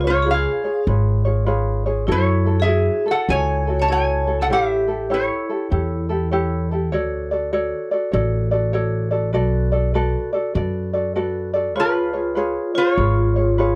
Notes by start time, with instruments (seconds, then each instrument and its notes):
Already playing: upright bass C#2
0.01 vibraphone F4, ukulele G#4 C#5
0.06 ukulele F4, resonator guitar played with a steel bar C#5
0.10 resonator guitar played with a steel bar F4
0.22 ukulele F4 B4, vibraphone G#4
0.27 ukulele G#4 C#5, resonator guitar played with a steel bar F5
0.34 resonator guitar played with a steel bar G#4
0.64 ukulele F4 G#4 C#5
0.87 upright bass G#1, ukulele F4 G#4 B4 C#5
1.25 ukulele F4 G#4 C#5
1.46 ukulele F4 G#4 B4 C#5
1.86 ukulele F4 G#4 C#5
2.07 upright bass F#2, vibraphone E4, ukulele E4 F#4 A4 C#5
2.12 resonator guitar played with a steel bar E4 C#5
2.46 ukulele E4 F#4 A4
2.60 vibraphone G#4, resonator guitar played with a steel bar G#4 E5
2.67 ukulele E4 F#4 C#5
3.06 ukulele E4 F#4 A4, vibraphone A4
3.11 resonator guitar played with a steel bar A4 F#5
3.28 upright bass C#2, ukulele E4 F#4 A4 C#5, vibraphone C#5, resonator guitar played with a steel bar C#5 G#5
3.67 ukulele E4 F#4 A4
3.80 vibraphone C#5, resonator guitar played with a steel bar C#5 A5
3.88 ukulele E4 F#4 A4 C#5, vibraphone C#5, resonator guitar played with a steel bar C#5
3.92 resonator guitar played with a steel bar G#5
4.27 ukulele E4 F#4 A4
4.41 vibraphone A4, resonator guitar played with a steel bar A4 F#5
4.49 upright bass A1, ukulele E4 G4 A4 C#5, resonator guitar played with a steel bar G4 E5
4.55 vibraphone G4
4.88 ukulele E4 G4 A4
5.10 ukulele E4 G4 A4 C#5, resonator guitar played with a steel bar E4 C#5
5.15 vibraphone E4
5.50 ukulele E4 G4 A4
5.70 upright bass E2, ukulele E4 G4 A4 C#5
6.09 ukulele E4 G4 A4
6.31 ukulele E4 G4 A4 C#5
6.71 ukulele E4 G4 A4
6.92 upright bass D2, ukulele F#4 A4 C#5 D5
7.31 ukulele F#4 A4 D5
7.53 ukulele F#4 A4 C#5 D5
7.91 ukulele F#4 A4 D5
8.12 upright bass A1, ukulele F#4 A4 C#5 D5
8.51 ukulele F#4 A4 D5
8.73 ukulele F#4 A4 C#5 D5
9.11 ukulele F#4 A4 D5
9.33 upright bass B1, ukulele F#4 A4 B4 D5
9.72 ukulele F#4 A4 D5
9.94 ukulele F#4 A4 B4 D5
10.33 ukulele F#4 A4 D5
10.54 upright bass F#2, ukulele F#4 A4 B4 D5
10.93 ukulele F#4 A4 D5
11.15 ukulele F#4 A4 B4 D5
11.54 ukulele F#4 A4 D5
11.75 upright bass C#2, vibraphone F4, ukulele F4 G#4 B4 C#5
11.80 resonator guitar played with a steel bar F4 B4
12.13 ukulele F4 G#4 C#5
12.35 ukulele F4 G#4 B4 C#5
12.74 vibraphone F4, ukulele F4 G#4 C#5, resonator guitar played with a steel bar F4 C#5
12.97 upright bass G#1, ukulele F4 G#4 B4 C#5
13.36 ukulele F4 G#4 C#5
13.58 ukulele F4 G#4 B4 C#5